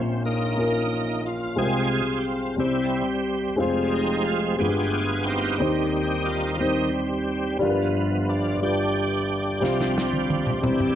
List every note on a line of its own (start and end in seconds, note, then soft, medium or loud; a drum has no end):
0.00 1.54 A#1 medium
0.00 1.54 A#2 medium
0.00 0.41 A#3 medium
0.00 0.23 C4 medium
0.00 0.42 C#4 medium
0.00 0.42 F4 medium
0.00 0.43 C#5 medium
0.25 1.21 A#3 soft
0.25 1.28 D#4 medium
0.55 1.41 A#3 soft
0.55 1.42 C#4 soft
0.55 1.43 F4 soft
0.59 1.43 A#4 medium
1.26 1.58 F4 medium
1.56 2.54 C2 soft
1.56 2.02 C3 soft
1.56 2.55 C3 soft
1.56 2.42 G#3 medium
1.56 2.03 G#3 soft
1.56 2.42 C4 medium
1.56 2.55 C4 medium
1.56 2.43 F4 soft
1.56 2.24 F4 medium
1.56 2.20 G#4 medium
1.56 1.65 A#4 soft
1.66 2.47 C5 medium
2.18 2.25 G4 soft
2.25 2.56 F4 medium
2.56 3.55 C2 soft
2.56 3.55 C3 soft
2.56 3.03 C3 soft
2.56 3.42 G3 soft
2.56 3.56 G3 soft
2.56 3.43 C4 soft
2.56 3.56 C4 soft
2.56 2.65 C#4 soft
2.56 3.04 E4 medium
2.56 3.44 C5 soft
2.65 3.47 E4 soft
3.56 4.55 F1 medium
3.56 4.55 F2 medium
3.56 4.56 F3 soft
3.56 4.43 G#3 medium
3.56 4.56 G#3 soft
3.56 4.43 C4 medium
3.56 4.44 F4 medium
3.60 4.57 C4 soft
3.60 4.45 C5 medium
3.94 4.25 D#4 medium
4.25 4.41 F4 medium
4.58 5.57 G1 soft
4.58 5.57 G2 soft
4.58 5.44 G#3 soft
4.58 5.56 B3 medium
4.58 5.45 F4 soft
4.58 5.57 F4 medium
4.58 5.04 G4 soft
4.58 5.45 G4 soft
4.58 5.28 G#4 medium
4.63 4.68 G#4 soft
4.69 5.49 B4 soft
5.24 6.23 C4 medium
5.24 5.59 D#4 medium
5.24 6.29 G4 medium
5.58 7.57 D#2 soft
5.58 6.56 D#3 soft
5.58 7.57 D#3 soft
5.58 6.44 G3 medium
5.58 6.57 G3 soft
5.58 6.45 C4 medium
5.58 6.57 D#4 soft
5.58 6.45 D#4 medium
5.58 6.46 C5 medium
6.26 6.51 F4 medium
6.54 6.61 F4 soft
6.59 6.90 D#3 soft
6.59 7.45 G3 soft
6.59 7.57 G3 soft
6.59 7.45 C4 soft
6.59 7.57 C4 soft
6.59 6.91 D#4 medium
6.59 7.46 D#4 soft
6.59 7.47 C5 soft
7.59 9.58 G1 medium
7.59 8.57 G2 soft
7.59 9.58 G2 medium
7.59 8.58 F3 soft
7.59 8.45 G3 medium
7.59 7.95 B3 soft
7.59 8.46 D4 medium
7.59 8.46 F4 medium
7.63 7.69 A#4 medium
7.70 8.51 B4 medium
7.97 8.30 B3 medium
8.29 8.60 D4 medium
8.60 9.46 G3 soft
8.60 9.46 D4 soft
8.60 10.95 D4 medium
8.60 9.47 F4 soft
8.60 10.95 G4 medium
8.60 9.48 B4 medium
9.60 10.59 C2 medium
9.60 10.59 C3 soft
9.60 10.59 C3 medium
9.60 10.59 F3 soft
9.60 10.46 G3 medium
9.60 10.59 G3 soft
9.60 10.47 C4 medium
9.60 10.48 F4 medium
9.60 snare soft
9.64 10.48 C5 medium
9.81 snare soft
9.98 snare medium
10.13 high tom soft
10.30 high tom medium
10.47 mid tom soft
10.62 10.95 C2 medium
10.62 10.95 C3 soft
10.62 10.95 C3 medium
10.62 10.95 E3 soft
10.62 10.95 G3 medium
10.62 10.95 G3 soft
10.62 10.95 C4 medium
10.62 10.95 E4 medium
10.62 mid tom medium
10.66 10.95 C5 medium
10.80 mid tom medium